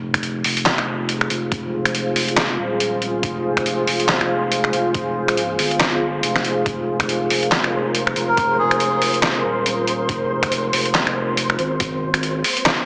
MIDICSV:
0, 0, Header, 1, 6, 480
1, 0, Start_track
1, 0, Key_signature, -4, "minor"
1, 0, Tempo, 428571
1, 1699, Time_signature, 4, 2, 24, 8
1, 14396, End_track
2, 0, Start_track
2, 0, Title_t, "Synth texture"
2, 0, Program_c, 0, 99
2, 7463, Note_on_c, 0, 72, 83
2, 14396, Note_off_c, 0, 72, 0
2, 14396, End_track
3, 0, Start_track
3, 0, Title_t, "Ambient pad"
3, 0, Program_c, 1, 92
3, 0, Note_on_c, 1, 65, 80
3, 0, Note_on_c, 1, 68, 72
3, 0, Note_on_c, 1, 72, 88
3, 7416, Note_off_c, 1, 72, 0
3, 7458, Note_on_c, 1, 70, 91
3, 14396, Note_off_c, 1, 65, 0
3, 14396, Note_off_c, 1, 68, 0
3, 14396, Note_off_c, 1, 70, 0
3, 14396, End_track
4, 0, Start_track
4, 0, Title_t, "Melodica"
4, 0, Program_c, 2, 22
4, 9279, Note_on_c, 2, 70, 88
4, 9599, Note_off_c, 2, 70, 0
4, 9619, Note_on_c, 2, 68, 93
4, 10298, Note_off_c, 2, 68, 0
4, 14396, End_track
5, 0, Start_track
5, 0, Title_t, "Sub bass"
5, 0, Program_c, 3, 38
5, 0, Note_on_c, 3, 29, 96
5, 483, Note_off_c, 3, 29, 0
5, 499, Note_on_c, 3, 29, 96
5, 1443, Note_off_c, 3, 29, 0
5, 1459, Note_on_c, 3, 29, 101
5, 2883, Note_off_c, 3, 29, 0
5, 2899, Note_on_c, 3, 27, 97
5, 3603, Note_off_c, 3, 27, 0
5, 3619, Note_on_c, 3, 29, 96
5, 4323, Note_off_c, 3, 29, 0
5, 4341, Note_on_c, 3, 29, 98
5, 5284, Note_off_c, 3, 29, 0
5, 5300, Note_on_c, 3, 29, 96
5, 6244, Note_off_c, 3, 29, 0
5, 6259, Note_on_c, 3, 31, 98
5, 6963, Note_off_c, 3, 31, 0
5, 6979, Note_on_c, 3, 29, 97
5, 7443, Note_off_c, 3, 29, 0
5, 7459, Note_on_c, 3, 29, 91
5, 8163, Note_off_c, 3, 29, 0
5, 8179, Note_on_c, 3, 29, 100
5, 9123, Note_off_c, 3, 29, 0
5, 9140, Note_on_c, 3, 29, 100
5, 10563, Note_off_c, 3, 29, 0
5, 10579, Note_on_c, 3, 27, 98
5, 11283, Note_off_c, 3, 27, 0
5, 11300, Note_on_c, 3, 29, 94
5, 12003, Note_off_c, 3, 29, 0
5, 12019, Note_on_c, 3, 29, 98
5, 12963, Note_off_c, 3, 29, 0
5, 12979, Note_on_c, 3, 32, 101
5, 13923, Note_off_c, 3, 32, 0
5, 14396, End_track
6, 0, Start_track
6, 0, Title_t, "Drums"
6, 158, Note_on_c, 9, 26, 70
6, 158, Note_on_c, 9, 36, 59
6, 158, Note_on_c, 9, 42, 53
6, 257, Note_off_c, 9, 42, 0
6, 257, Note_on_c, 9, 42, 81
6, 270, Note_off_c, 9, 26, 0
6, 270, Note_off_c, 9, 36, 0
6, 369, Note_off_c, 9, 42, 0
6, 497, Note_on_c, 9, 46, 92
6, 609, Note_off_c, 9, 46, 0
6, 637, Note_on_c, 9, 42, 56
6, 738, Note_off_c, 9, 42, 0
6, 738, Note_on_c, 9, 38, 121
6, 738, Note_on_c, 9, 39, 95
6, 738, Note_on_c, 9, 42, 86
6, 850, Note_off_c, 9, 38, 0
6, 850, Note_off_c, 9, 39, 0
6, 850, Note_off_c, 9, 42, 0
6, 876, Note_on_c, 9, 26, 73
6, 988, Note_off_c, 9, 26, 0
6, 1219, Note_on_c, 9, 42, 78
6, 1331, Note_off_c, 9, 42, 0
6, 1357, Note_on_c, 9, 26, 58
6, 1459, Note_on_c, 9, 42, 55
6, 1469, Note_off_c, 9, 26, 0
6, 1571, Note_off_c, 9, 42, 0
6, 1699, Note_on_c, 9, 36, 127
6, 1699, Note_on_c, 9, 42, 79
6, 1811, Note_off_c, 9, 36, 0
6, 1811, Note_off_c, 9, 42, 0
6, 2077, Note_on_c, 9, 26, 73
6, 2077, Note_on_c, 9, 42, 51
6, 2180, Note_off_c, 9, 42, 0
6, 2180, Note_on_c, 9, 42, 78
6, 2189, Note_off_c, 9, 26, 0
6, 2292, Note_off_c, 9, 42, 0
6, 2419, Note_on_c, 9, 46, 94
6, 2531, Note_off_c, 9, 46, 0
6, 2558, Note_on_c, 9, 42, 52
6, 2659, Note_off_c, 9, 42, 0
6, 2659, Note_on_c, 9, 38, 124
6, 2659, Note_on_c, 9, 39, 98
6, 2659, Note_on_c, 9, 42, 84
6, 2771, Note_off_c, 9, 38, 0
6, 2771, Note_off_c, 9, 39, 0
6, 2771, Note_off_c, 9, 42, 0
6, 3139, Note_on_c, 9, 42, 80
6, 3251, Note_off_c, 9, 42, 0
6, 3380, Note_on_c, 9, 42, 54
6, 3492, Note_off_c, 9, 42, 0
6, 3619, Note_on_c, 9, 36, 127
6, 3619, Note_on_c, 9, 42, 75
6, 3731, Note_off_c, 9, 36, 0
6, 3731, Note_off_c, 9, 42, 0
6, 3998, Note_on_c, 9, 26, 75
6, 3998, Note_on_c, 9, 36, 64
6, 3998, Note_on_c, 9, 42, 47
6, 4098, Note_off_c, 9, 42, 0
6, 4098, Note_on_c, 9, 42, 73
6, 4110, Note_off_c, 9, 26, 0
6, 4110, Note_off_c, 9, 36, 0
6, 4210, Note_off_c, 9, 42, 0
6, 4340, Note_on_c, 9, 46, 86
6, 4452, Note_off_c, 9, 46, 0
6, 4477, Note_on_c, 9, 42, 53
6, 4577, Note_off_c, 9, 42, 0
6, 4577, Note_on_c, 9, 38, 127
6, 4577, Note_on_c, 9, 39, 95
6, 4577, Note_on_c, 9, 42, 79
6, 4689, Note_off_c, 9, 38, 0
6, 4689, Note_off_c, 9, 39, 0
6, 4689, Note_off_c, 9, 42, 0
6, 4716, Note_on_c, 9, 26, 74
6, 4828, Note_off_c, 9, 26, 0
6, 5058, Note_on_c, 9, 42, 75
6, 5170, Note_off_c, 9, 42, 0
6, 5196, Note_on_c, 9, 26, 58
6, 5299, Note_on_c, 9, 42, 50
6, 5308, Note_off_c, 9, 26, 0
6, 5411, Note_off_c, 9, 42, 0
6, 5538, Note_on_c, 9, 42, 73
6, 5539, Note_on_c, 9, 36, 124
6, 5650, Note_off_c, 9, 42, 0
6, 5651, Note_off_c, 9, 36, 0
6, 5917, Note_on_c, 9, 26, 76
6, 5917, Note_on_c, 9, 42, 47
6, 6019, Note_off_c, 9, 42, 0
6, 6019, Note_on_c, 9, 42, 71
6, 6029, Note_off_c, 9, 26, 0
6, 6131, Note_off_c, 9, 42, 0
6, 6260, Note_on_c, 9, 46, 92
6, 6372, Note_off_c, 9, 46, 0
6, 6398, Note_on_c, 9, 42, 50
6, 6501, Note_off_c, 9, 42, 0
6, 6501, Note_on_c, 9, 38, 127
6, 6501, Note_on_c, 9, 39, 90
6, 6501, Note_on_c, 9, 42, 77
6, 6613, Note_off_c, 9, 38, 0
6, 6613, Note_off_c, 9, 39, 0
6, 6613, Note_off_c, 9, 42, 0
6, 6979, Note_on_c, 9, 42, 72
6, 7091, Note_off_c, 9, 42, 0
6, 7119, Note_on_c, 9, 26, 60
6, 7119, Note_on_c, 9, 38, 37
6, 7219, Note_on_c, 9, 42, 53
6, 7231, Note_off_c, 9, 26, 0
6, 7231, Note_off_c, 9, 38, 0
6, 7331, Note_off_c, 9, 42, 0
6, 7459, Note_on_c, 9, 36, 119
6, 7459, Note_on_c, 9, 42, 78
6, 7571, Note_off_c, 9, 36, 0
6, 7571, Note_off_c, 9, 42, 0
6, 7838, Note_on_c, 9, 26, 81
6, 7838, Note_on_c, 9, 36, 63
6, 7838, Note_on_c, 9, 42, 48
6, 7940, Note_off_c, 9, 42, 0
6, 7940, Note_on_c, 9, 42, 73
6, 7950, Note_off_c, 9, 26, 0
6, 7950, Note_off_c, 9, 36, 0
6, 8052, Note_off_c, 9, 42, 0
6, 8181, Note_on_c, 9, 46, 93
6, 8293, Note_off_c, 9, 46, 0
6, 8319, Note_on_c, 9, 42, 49
6, 8420, Note_off_c, 9, 42, 0
6, 8420, Note_on_c, 9, 38, 124
6, 8420, Note_on_c, 9, 39, 88
6, 8420, Note_on_c, 9, 42, 77
6, 8532, Note_off_c, 9, 38, 0
6, 8532, Note_off_c, 9, 39, 0
6, 8532, Note_off_c, 9, 42, 0
6, 8559, Note_on_c, 9, 26, 78
6, 8671, Note_off_c, 9, 26, 0
6, 8900, Note_on_c, 9, 42, 75
6, 9012, Note_off_c, 9, 42, 0
6, 9040, Note_on_c, 9, 26, 63
6, 9140, Note_on_c, 9, 42, 51
6, 9152, Note_off_c, 9, 26, 0
6, 9252, Note_off_c, 9, 42, 0
6, 9379, Note_on_c, 9, 42, 77
6, 9380, Note_on_c, 9, 36, 116
6, 9491, Note_off_c, 9, 42, 0
6, 9492, Note_off_c, 9, 36, 0
6, 9757, Note_on_c, 9, 26, 80
6, 9757, Note_on_c, 9, 42, 51
6, 9858, Note_off_c, 9, 42, 0
6, 9858, Note_on_c, 9, 42, 77
6, 9869, Note_off_c, 9, 26, 0
6, 9970, Note_off_c, 9, 42, 0
6, 10098, Note_on_c, 9, 46, 99
6, 10210, Note_off_c, 9, 46, 0
6, 10238, Note_on_c, 9, 42, 51
6, 10339, Note_off_c, 9, 42, 0
6, 10339, Note_on_c, 9, 38, 124
6, 10339, Note_on_c, 9, 39, 89
6, 10339, Note_on_c, 9, 42, 85
6, 10451, Note_off_c, 9, 38, 0
6, 10451, Note_off_c, 9, 39, 0
6, 10451, Note_off_c, 9, 42, 0
6, 10819, Note_on_c, 9, 42, 78
6, 10931, Note_off_c, 9, 42, 0
6, 11060, Note_on_c, 9, 42, 53
6, 11172, Note_off_c, 9, 42, 0
6, 11300, Note_on_c, 9, 36, 110
6, 11300, Note_on_c, 9, 42, 84
6, 11412, Note_off_c, 9, 36, 0
6, 11412, Note_off_c, 9, 42, 0
6, 11678, Note_on_c, 9, 36, 62
6, 11679, Note_on_c, 9, 26, 80
6, 11679, Note_on_c, 9, 42, 53
6, 11779, Note_off_c, 9, 42, 0
6, 11779, Note_on_c, 9, 42, 79
6, 11790, Note_off_c, 9, 36, 0
6, 11791, Note_off_c, 9, 26, 0
6, 11891, Note_off_c, 9, 42, 0
6, 12019, Note_on_c, 9, 46, 102
6, 12131, Note_off_c, 9, 46, 0
6, 12157, Note_on_c, 9, 42, 55
6, 12260, Note_off_c, 9, 42, 0
6, 12260, Note_on_c, 9, 38, 117
6, 12260, Note_on_c, 9, 39, 88
6, 12260, Note_on_c, 9, 42, 86
6, 12372, Note_off_c, 9, 38, 0
6, 12372, Note_off_c, 9, 39, 0
6, 12372, Note_off_c, 9, 42, 0
6, 12398, Note_on_c, 9, 26, 84
6, 12510, Note_off_c, 9, 26, 0
6, 12738, Note_on_c, 9, 42, 82
6, 12850, Note_off_c, 9, 42, 0
6, 12877, Note_on_c, 9, 26, 63
6, 12977, Note_on_c, 9, 42, 53
6, 12989, Note_off_c, 9, 26, 0
6, 13089, Note_off_c, 9, 42, 0
6, 13216, Note_on_c, 9, 42, 84
6, 13219, Note_on_c, 9, 36, 114
6, 13328, Note_off_c, 9, 42, 0
6, 13331, Note_off_c, 9, 36, 0
6, 13596, Note_on_c, 9, 26, 78
6, 13596, Note_on_c, 9, 42, 54
6, 13698, Note_off_c, 9, 42, 0
6, 13698, Note_on_c, 9, 42, 84
6, 13708, Note_off_c, 9, 26, 0
6, 13810, Note_off_c, 9, 42, 0
6, 13937, Note_on_c, 9, 46, 98
6, 14049, Note_off_c, 9, 46, 0
6, 14076, Note_on_c, 9, 42, 57
6, 14179, Note_off_c, 9, 42, 0
6, 14179, Note_on_c, 9, 38, 118
6, 14179, Note_on_c, 9, 39, 98
6, 14179, Note_on_c, 9, 42, 91
6, 14291, Note_off_c, 9, 38, 0
6, 14291, Note_off_c, 9, 39, 0
6, 14291, Note_off_c, 9, 42, 0
6, 14396, End_track
0, 0, End_of_file